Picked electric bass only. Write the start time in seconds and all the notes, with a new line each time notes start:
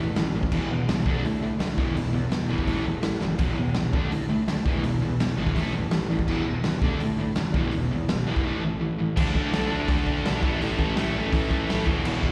0.00 E2
0.17 A1
0.34 A1
0.52 E1
0.70 E2
0.88 C2
1.06 D2
1.25 A2
1.43 A2
1.60 D2
1.77 E1
1.97 E1
2.14 E2
2.33 E1
2.50 G1
2.68 A1
2.86 E2
3.05 A1
3.23 F#1
3.39 E1
3.59 E2
3.76 E1
3.93 D2
4.12 A2
4.30 A2
4.48 D2
4.66 E1
4.83 E1
5.02 E2
5.20 E1
5.37 G#1
5.56 A1
5.73 E2
5.92 A1
6.11 A1
6.28 E1
6.47 E2
6.65 E2
6.82 D2
7.00 A2
7.18 A2
7.38 F#2
7.55 E1
7.76 E1
7.94 E2
8.12 E1
8.29 E1
9.17 D2
9.35 D2
9.53 D2
9.72 D2
9.88 D2
10.07 D2
10.25 B1
10.43 A1
10.61 A1
10.78 A1
10.97 A1
11.14 A1
11.33 A1
11.51 A1
11.70 A1
11.87 E1
12.06 E1
12.23 E1